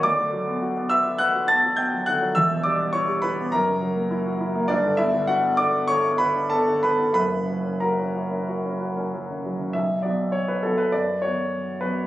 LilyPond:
<<
  \new Staff \with { instrumentName = "Grand piano" } { \time 4/4 \key b \minor \tempo 4 = 102 <d'' d'''>4. <e'' e'''>8 <fis'' fis'''>8 <a'' a'''>8 <g'' g'''>8 <fis'' fis'''>8 | <e'' e'''>8 <d'' d'''>8 <cis'' cis'''>8 <b' b''>8 <ais' ais''>4 r4 | <d' d''>8 <e' e''>8 <fis' fis''>8 <d'' d'''>8 <cis'' cis'''>8 <b' b''>8 <a' a''>8 <b' b''>8 | <b' b''>4 <ais' ais''>2 r4 |
e''8 d''8 cis''16 b'16 a'16 b'16 d''8 cis''4 b'8 | }
  \new Staff \with { instrumentName = "Grand piano" } { \time 4/4 \key b \minor d,16 d16 fis16 b16 fis'16 b16 b'16 fis'16 b'16 fis'16 b16 fis'16 b16 fis16 d16 fis16 | <e,, e,>16 b,16 g16 b16 e'16 g'16 e'16 b16 fis,16 cis16 fis16 ais16 e'16 fis'16 e'16 ais16 | <g,, g,>16 d16 b16 d16 d'16 b16 d16 b16 d16 b16 d16 d'16 b16 d16 b16 d16 | <fis,, fis,>16 cis16 fis16 cis'16 fis'16 cis'16 fis'16 cis'16 fis'16 cis'16 fis'16 cis'16 fis16 cis16 fis16 cis16 |
b,,8 <fis b fis'>4 <fis b fis'>8 fis,8 <fis b fis'>4 <fis b fis'>8 | }
>>